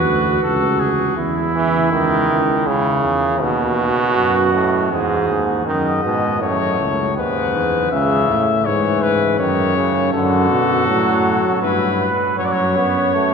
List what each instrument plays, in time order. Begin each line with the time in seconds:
Already playing: flugelhorn F#4, trumpet B4
0.07 bass trombone D2
0.43 bass trombone C#2, trumpet A4
0.80 trumpet G#4
1.17 bass trombone E2, flugelhorn E4
1.55 trombone E3
1.92 bass trombone C#2, trombone D#3
2.29 bass trombone C#2
2.67 bass trombone C#2, trombone C#3
3.04 bass trombone E2
3.41 bass trombone D#2, trombone B2, flugelhorn F#4
4.17 bass trombone F#2
4.54 trombone A2
4.91 bass trombone E2, trombone G#2, flugelhorn G#4
5.29 bass trombone D#2
5.66 bass trombone F#2, trombone D#3, trumpet D#5
6.04 bass trombone G#2, trombone B2
6.41 bass trombone F#2, trombone A2, trumpet C#5
6.80 bass trombone C#2
7.17 bass trombone D#2, trombone G#2, trumpet B4
7.55 bass trombone E2
7.92 bass trombone C#2, trombone C#3, trumpet E5
8.29 bass trombone A2
8.66 bass trombone G#2, trombone E3, trumpet C#5
9.02 trumpet B4
9.39 bass trombone F#2, trombone D#3, trumpet C#5
9.77 trombone C#3
10.13 bass trombone F#2, trombone D3, flugelhorn F#4, trumpet A4
10.50 bass trombone B2
10.87 bass trombone A2, trombone F#3
11.62 bass trombone G2, flugelhorn E4, trumpet B4
12.01 flugelhorn B4
12.38 bass trombone F#2, trombone F#3, trumpet C#5, flugelhorn C#5
12.45 trumpet D5
12.52 trumpet C#5
12.76 trombone B3
13.14 trombone A3